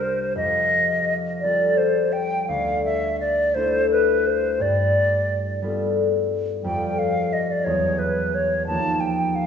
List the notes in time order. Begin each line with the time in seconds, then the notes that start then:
Already playing: C2 G3 C4 D4 G4
0.00 C5
0.35 F2 D#5
1.41 G3 C4 F4 A4 D5
1.77 C5
2.13 G5
2.48 D2 F5
2.85 E5
3.20 D5
3.55 A3 D4 E4 A4 C5
3.91 B4
4.26 C5
4.59 G2 D5
5.62 G3 B3 F4 A4
6.64 F2 G3 C4 F4 A4 G5
6.99 F5
7.33 D#5
7.51 D5
7.64 E2 F#3 G#3 F#4 G#4 C#5
7.99 B4
8.35 C#5
8.67 D#2 F3 A#3 D#4 F4 A5
9.00 G5
9.36 F5